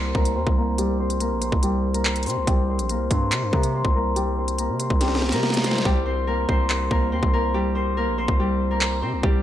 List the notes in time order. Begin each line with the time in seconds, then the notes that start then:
Already playing: C2 G3 A#3 C4 G4 A#4 C5
0.15 C2 A#3 A#4, kick
0.25 closed hi-hat
0.36 D#2 C4 C5
0.47 C2, kick
0.57 A#3 A#4
0.78 G3 G4, closed hi-hat
1.00 C4 C5
1.10 closed hi-hat
1.20 A#3 A#4, closed hi-hat
1.31 A#1
1.41 C4 C5, closed hi-hat
1.52 C2, kick
1.63 G3 G4, closed hi-hat
1.94 A#3 A#4, closed hi-hat
2.05 clap
2.16 closed hi-hat
2.23 C3 C5, closed hi-hat, open hi-hat
2.27 C4, closed hi-hat
2.37 C2
2.47 C2 G3 G4, kick, closed hi-hat
2.69 C4 C5
2.79 A#1, closed hi-hat
2.89 A#3 A#4, closed hi-hat
2.95 C2
3.11 G2 C4 C5, kick, closed hi-hat
3.32 C3, clap, closed hi-hat
3.42 G2
3.53 C3 A#3 A#4, kick
3.63 closed hi-hat
3.74 C4 C5
3.85 C2, kick
3.95 A#3 A#4
4.16 G3 G4, closed hi-hat
4.37 C4 C5
4.48 closed hi-hat
4.58 A#3 A#4, closed hi-hat
4.69 C3
4.80 C4 C5, closed hi-hat
4.90 C2, kick
5.01 G3 G4, snare, closed hi-hat
5.08 snare
5.15 snare
5.22 snare
5.29 C3 A#4, snare, closed hi-hat
5.33 A#3, snare
5.43 snare
5.50 snare, closed hi-hat
5.57 snare
5.64 C4 C5, snare, closed hi-hat
5.71 snare
5.78 snare
5.85 C2 G3 G4, kick
6.06 C4 C5
6.27 A#3 A#4
6.49 C2 C4 C5, kick
6.70 clap
6.91 C2 A#3 A#4, kick
7.12 D#2 C4 C5
7.23 C2, kick
7.33 A#3 A#4
7.54 G3 G4
7.75 C4 C5
7.97 A#3 A#4
8.07 A#1
8.18 C4 C5
8.28 C2, kick
8.40 G3 G4
8.71 A#3 A#4
8.81 clap
9.02 C3 C4 C5
9.13 C2
9.23 C2 G3 G4, kick